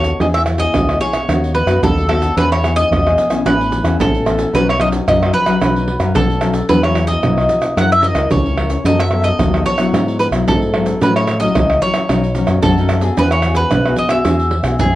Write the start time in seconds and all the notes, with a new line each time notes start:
Already playing: D#2 D#3 B3 F#4 A4 C#5
0.04 pandeiro, shaker, surdo
0.20 E2 E3 B3 E4 G#4 D#5, pandeiro, shaker, surdo
0.34 E5, pandeiro, tamborim, shaker
0.46 pandeiro, tamborim, shaker
0.58 B3 E4 G#4 D#5, pandeiro, shaker, surdo
0.74 D2 B2, pandeiro, tamborim, shaker, surdo
0.89 pandeiro, tamborim, shaker
1.00 B3 E4 G#4 C#5, pandeiro, shaker, surdo
1.13 pandeiro, tamborim, shaker, surdo
1.28 D#2 D#3 B3 D#4 F#4, pandeiro, tamborim, shaker, surdo
1.44 pandeiro, shaker
1.55 B4, pandeiro
1.66 F#2 B3 D#4 F#4, pandeiro, tamborim, shaker, surdo
1.82 D#2 D#3 A4, pandeiro, shaker, surdo
1.98 pandeiro, shaker
2.09 B3 D#4 F#4 A4, pandeiro, tamborim
2.22 pandeiro, shaker, surdo
2.36 E2 E3 B3 D#4 G#4 B4, pandeiro, shaker, surdo
2.52 C#5, pandeiro, tamborim, shaker
2.63 B3 D#4 G#4, pandeiro, tamborim, shaker
2.76 D#5, pandeiro, shaker, surdo
2.91 E2 B2, pandeiro, tamborim, shaker, surdo
3.06 B3 D#4 G#4, pandeiro, tamborim, shaker
3.18 pandeiro, shaker, surdo
3.30 E3 B3 C#4, pandeiro, tamborim, shaker, surdo
3.45 A1 A2 B4, pandeiro, tamborim, shaker, surdo
3.61 pandeiro, shaker
3.72 pandeiro, shaker
3.83 E2 E3 B3 C#4, pandeiro, tamborim, shaker, surdo
3.99 A1 E3 A4, pandeiro, shaker, surdo
4.14 pandeiro, shaker
4.25 E3 B3 C#4, pandeiro, tamborim, shaker
4.39 pandeiro, shaker, surdo
4.53 B1 B2 F#3 C#4 D#4 B4, pandeiro, shaker, surdo
4.69 C#5, pandeiro, tamborim, shaker
4.78 F#3 C#4 D#4 D#5, pandeiro, tamborim
4.92 pandeiro, shaker, surdo
5.07 F#2 F#3 D#5, pandeiro, tamborim, shaker, surdo
5.21 F#3 C#4 D#4, pandeiro, tamborim, shaker
5.33 B4, pandeiro, shaker, surdo
5.46 F#3 C#4 D#4, pandeiro, tamborim, shaker, surdo
5.61 B1 B2 F#3 C#4 D#4, pandeiro, tamborim, shaker, surdo
5.76 pandeiro, shaker
5.88 pandeiro
5.99 F#2 F#3 C#4 D#4, pandeiro, tamborim, shaker, surdo
6.15 B1 F#3 A4, pandeiro, shaker, surdo
6.30 pandeiro, shaker
6.41 F#3 C#4 D#4, pandeiro, tamborim, shaker
6.54 pandeiro, shaker, surdo
6.69 E2 E3 F#3 B3 E4 B4, pandeiro, shaker, surdo
6.83 F#3 B3 E4 C#5, pandeiro, tamborim, shaker
6.95 pandeiro, tamborim, shaker
7.07 D#5, pandeiro, shaker, surdo
7.23 B1 B2 F#3 B3 E4, pandeiro, tamborim, shaker, surdo
7.38 pandeiro, tamborim, shaker
7.49 pandeiro, shaker, surdo
7.62 pandeiro, tamborim, shaker, surdo
7.77 F#2 F#3 C#4 E4 A#4 F#5, pandeiro, tamborim, shaker, surdo
7.92 E5, pandeiro, shaker
8.03 D#5, pandeiro, shaker
8.15 C#2 C#4 E4 A#4, pandeiro, tamborim, shaker, surdo
8.31 C#2 C#3 C#5, pandeiro, shaker, surdo
8.46 pandeiro, shaker
8.58 C#4 E4 A#4, pandeiro, tamborim
8.70 pandeiro, shaker, surdo
8.84 F#2 F#3 B3 D#4 A4 D#5, pandeiro, shaker, surdo
9.00 E5, pandeiro, tamborim, shaker
9.11 B3 D#4 A4, pandeiro, tamborim, shaker
9.24 D#5, pandeiro, shaker, surdo
9.39 D#2 F#3, pandeiro, tamborim, shaker, surdo
9.54 B3 D#4 A4, pandeiro, tamborim, shaker
9.66 C#5, pandeiro, shaker, surdo
9.78 F#3 B3 E4, pandeiro, tamborim, shaker, surdo
9.93 G#2, pandeiro, tamborim, shaker, surdo
10.08 pandeiro, shaker
10.19 B4, pandeiro, shaker
10.31 B1 F#3 B3 E4, pandeiro, tamborim, shaker, surdo
10.47 G#2 A4, pandeiro, shaker, surdo
10.62 pandeiro, shaker
10.74 F#3 B3 E4, pandeiro, tamborim
10.86 pandeiro, shaker, surdo
11.02 A2 F#3 C#4 E4 B4, pandeiro, shaker, surdo
11.16 C#5, pandeiro, tamborim, shaker
11.27 pandeiro, tamborim, shaker
11.40 F#3 C#4 E4 D#5, pandeiro, shaker, surdo
11.55 C#2 E3, pandeiro, tamborim, shaker, surdo
11.70 pandeiro, tamborim, shaker
11.81 F#3 C#4 E4 C#5, pandeiro, shaker, surdo
11.94 pandeiro, tamborim, shaker, surdo
12.09 B1 B2 F#3 C#4 D#4, pandeiro, tamborim, shaker, surdo
12.24 pandeiro, shaker
12.35 F#3 C#4 D#4, pandeiro, shaker
12.47 F#2, pandeiro, tamborim, shaker, surdo
12.63 F#2 F#3 A4, pandeiro, shaker, surdo
12.78 F#3 C#4 D#4, pandeiro, shaker
12.89 pandeiro, tamborim, shaker
13.01 B3 F#4 G#4, pandeiro, shaker, surdo
13.17 E2 E3 B4, pandeiro, shaker, surdo
13.31 C#5, pandeiro, tamborim, shaker
13.42 B3 F#4 G#4, pandeiro, tamborim, shaker
13.55 B4, pandeiro, shaker, surdo
13.71 B1 B2, pandeiro, tamborim, shaker, surdo
13.85 B3 F#4 G#4, pandeiro, tamborim, shaker
13.96 D#5, pandeiro, shaker, surdo
14.09 B3 F#4 G#4 E5, pandeiro, tamborim, shaker, surdo
14.25 E2 E3 B3 F#4 G#4, pandeiro, tamborim, shaker, surdo
14.40 pandeiro, shaker
14.51 pandeiro
14.63 B1 B3 F#4 G#4, pandeiro, tamborim, shaker, surdo
14.79 F#2 B2 G#4, pandeiro, shaker, surdo